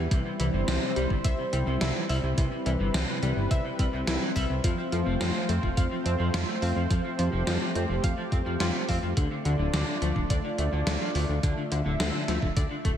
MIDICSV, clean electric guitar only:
0, 0, Header, 1, 2, 480
1, 0, Start_track
1, 0, Tempo, 566038
1, 96, Time_signature, 4, 2, 24, 8
1, 11001, End_track
2, 0, Start_track
2, 0, Title_t, "Clean electric guitar"
2, 0, Program_c, 0, 27
2, 96, Note_on_c, 0, 48, 81
2, 186, Note_off_c, 0, 48, 0
2, 216, Note_on_c, 0, 48, 75
2, 252, Note_off_c, 0, 48, 0
2, 336, Note_on_c, 0, 55, 79
2, 372, Note_off_c, 0, 55, 0
2, 456, Note_on_c, 0, 48, 100
2, 516, Note_off_c, 0, 48, 0
2, 576, Note_on_c, 0, 48, 87
2, 666, Note_off_c, 0, 48, 0
2, 695, Note_on_c, 0, 48, 77
2, 785, Note_off_c, 0, 48, 0
2, 816, Note_on_c, 0, 55, 79
2, 876, Note_off_c, 0, 55, 0
2, 934, Note_on_c, 0, 48, 75
2, 971, Note_off_c, 0, 48, 0
2, 1055, Note_on_c, 0, 48, 84
2, 1092, Note_off_c, 0, 48, 0
2, 1176, Note_on_c, 0, 48, 76
2, 1212, Note_off_c, 0, 48, 0
2, 1296, Note_on_c, 0, 55, 79
2, 1332, Note_off_c, 0, 55, 0
2, 1415, Note_on_c, 0, 48, 105
2, 1475, Note_off_c, 0, 48, 0
2, 1536, Note_on_c, 0, 48, 87
2, 1626, Note_off_c, 0, 48, 0
2, 1657, Note_on_c, 0, 52, 76
2, 1716, Note_off_c, 0, 52, 0
2, 1775, Note_on_c, 0, 55, 73
2, 1835, Note_off_c, 0, 55, 0
2, 1895, Note_on_c, 0, 48, 77
2, 1931, Note_off_c, 0, 48, 0
2, 2014, Note_on_c, 0, 48, 77
2, 2105, Note_off_c, 0, 48, 0
2, 2134, Note_on_c, 0, 48, 71
2, 2171, Note_off_c, 0, 48, 0
2, 2255, Note_on_c, 0, 55, 78
2, 2291, Note_off_c, 0, 55, 0
2, 2375, Note_on_c, 0, 48, 101
2, 2435, Note_off_c, 0, 48, 0
2, 2494, Note_on_c, 0, 48, 88
2, 2585, Note_off_c, 0, 48, 0
2, 2613, Note_on_c, 0, 48, 78
2, 2704, Note_off_c, 0, 48, 0
2, 2733, Note_on_c, 0, 55, 75
2, 2794, Note_off_c, 0, 55, 0
2, 2854, Note_on_c, 0, 48, 77
2, 2891, Note_off_c, 0, 48, 0
2, 2974, Note_on_c, 0, 48, 82
2, 3011, Note_off_c, 0, 48, 0
2, 3093, Note_on_c, 0, 48, 77
2, 3130, Note_off_c, 0, 48, 0
2, 3214, Note_on_c, 0, 55, 78
2, 3251, Note_off_c, 0, 55, 0
2, 3333, Note_on_c, 0, 48, 102
2, 3394, Note_off_c, 0, 48, 0
2, 3453, Note_on_c, 0, 48, 86
2, 3544, Note_off_c, 0, 48, 0
2, 3574, Note_on_c, 0, 52, 73
2, 3635, Note_off_c, 0, 52, 0
2, 3694, Note_on_c, 0, 55, 74
2, 3755, Note_off_c, 0, 55, 0
2, 3815, Note_on_c, 0, 48, 77
2, 3851, Note_off_c, 0, 48, 0
2, 3934, Note_on_c, 0, 53, 77
2, 4025, Note_off_c, 0, 53, 0
2, 4054, Note_on_c, 0, 53, 71
2, 4091, Note_off_c, 0, 53, 0
2, 4174, Note_on_c, 0, 53, 80
2, 4235, Note_off_c, 0, 53, 0
2, 4293, Note_on_c, 0, 53, 97
2, 4354, Note_off_c, 0, 53, 0
2, 4413, Note_on_c, 0, 53, 86
2, 4504, Note_off_c, 0, 53, 0
2, 4532, Note_on_c, 0, 53, 79
2, 4624, Note_off_c, 0, 53, 0
2, 4653, Note_on_c, 0, 60, 77
2, 4715, Note_off_c, 0, 60, 0
2, 4773, Note_on_c, 0, 53, 77
2, 4810, Note_off_c, 0, 53, 0
2, 4894, Note_on_c, 0, 53, 83
2, 4931, Note_off_c, 0, 53, 0
2, 5014, Note_on_c, 0, 53, 79
2, 5051, Note_off_c, 0, 53, 0
2, 5135, Note_on_c, 0, 60, 77
2, 5171, Note_off_c, 0, 60, 0
2, 5254, Note_on_c, 0, 53, 100
2, 5315, Note_off_c, 0, 53, 0
2, 5374, Note_on_c, 0, 53, 83
2, 5465, Note_off_c, 0, 53, 0
2, 5494, Note_on_c, 0, 57, 77
2, 5555, Note_off_c, 0, 57, 0
2, 5614, Note_on_c, 0, 60, 77
2, 5675, Note_off_c, 0, 60, 0
2, 5734, Note_on_c, 0, 53, 75
2, 5771, Note_off_c, 0, 53, 0
2, 5854, Note_on_c, 0, 53, 82
2, 5945, Note_off_c, 0, 53, 0
2, 5974, Note_on_c, 0, 53, 74
2, 6011, Note_off_c, 0, 53, 0
2, 6094, Note_on_c, 0, 53, 77
2, 6155, Note_off_c, 0, 53, 0
2, 6214, Note_on_c, 0, 53, 97
2, 6275, Note_off_c, 0, 53, 0
2, 6334, Note_on_c, 0, 53, 81
2, 6425, Note_off_c, 0, 53, 0
2, 6454, Note_on_c, 0, 53, 79
2, 6545, Note_off_c, 0, 53, 0
2, 6575, Note_on_c, 0, 60, 75
2, 6635, Note_off_c, 0, 60, 0
2, 6695, Note_on_c, 0, 53, 77
2, 6731, Note_off_c, 0, 53, 0
2, 6815, Note_on_c, 0, 53, 83
2, 6851, Note_off_c, 0, 53, 0
2, 6935, Note_on_c, 0, 53, 77
2, 6971, Note_off_c, 0, 53, 0
2, 7055, Note_on_c, 0, 60, 78
2, 7091, Note_off_c, 0, 60, 0
2, 7174, Note_on_c, 0, 53, 105
2, 7235, Note_off_c, 0, 53, 0
2, 7296, Note_on_c, 0, 53, 80
2, 7386, Note_off_c, 0, 53, 0
2, 7416, Note_on_c, 0, 57, 74
2, 7476, Note_off_c, 0, 57, 0
2, 7536, Note_on_c, 0, 60, 78
2, 7596, Note_off_c, 0, 60, 0
2, 7656, Note_on_c, 0, 53, 79
2, 7692, Note_off_c, 0, 53, 0
2, 7776, Note_on_c, 0, 50, 78
2, 7866, Note_off_c, 0, 50, 0
2, 7896, Note_on_c, 0, 50, 75
2, 7932, Note_off_c, 0, 50, 0
2, 8016, Note_on_c, 0, 50, 77
2, 8076, Note_off_c, 0, 50, 0
2, 8135, Note_on_c, 0, 50, 97
2, 8195, Note_off_c, 0, 50, 0
2, 8256, Note_on_c, 0, 50, 85
2, 8346, Note_off_c, 0, 50, 0
2, 8376, Note_on_c, 0, 50, 80
2, 8466, Note_off_c, 0, 50, 0
2, 8495, Note_on_c, 0, 57, 79
2, 8555, Note_off_c, 0, 57, 0
2, 8614, Note_on_c, 0, 50, 78
2, 8651, Note_off_c, 0, 50, 0
2, 8735, Note_on_c, 0, 50, 84
2, 8771, Note_off_c, 0, 50, 0
2, 8855, Note_on_c, 0, 50, 77
2, 8892, Note_off_c, 0, 50, 0
2, 8975, Note_on_c, 0, 57, 80
2, 9011, Note_off_c, 0, 57, 0
2, 9096, Note_on_c, 0, 50, 101
2, 9156, Note_off_c, 0, 50, 0
2, 9216, Note_on_c, 0, 50, 82
2, 9306, Note_off_c, 0, 50, 0
2, 9335, Note_on_c, 0, 53, 76
2, 9395, Note_off_c, 0, 53, 0
2, 9456, Note_on_c, 0, 57, 74
2, 9516, Note_off_c, 0, 57, 0
2, 9576, Note_on_c, 0, 50, 76
2, 9612, Note_off_c, 0, 50, 0
2, 9696, Note_on_c, 0, 50, 83
2, 9786, Note_off_c, 0, 50, 0
2, 9816, Note_on_c, 0, 50, 74
2, 9852, Note_off_c, 0, 50, 0
2, 9936, Note_on_c, 0, 50, 77
2, 9996, Note_off_c, 0, 50, 0
2, 10055, Note_on_c, 0, 50, 98
2, 10115, Note_off_c, 0, 50, 0
2, 10176, Note_on_c, 0, 50, 88
2, 10266, Note_off_c, 0, 50, 0
2, 10296, Note_on_c, 0, 50, 76
2, 10386, Note_off_c, 0, 50, 0
2, 10415, Note_on_c, 0, 57, 78
2, 10475, Note_off_c, 0, 57, 0
2, 10535, Note_on_c, 0, 50, 77
2, 10572, Note_off_c, 0, 50, 0
2, 10656, Note_on_c, 0, 50, 79
2, 10692, Note_off_c, 0, 50, 0
2, 10776, Note_on_c, 0, 50, 79
2, 10812, Note_off_c, 0, 50, 0
2, 10896, Note_on_c, 0, 57, 81
2, 10932, Note_off_c, 0, 57, 0
2, 11001, End_track
0, 0, End_of_file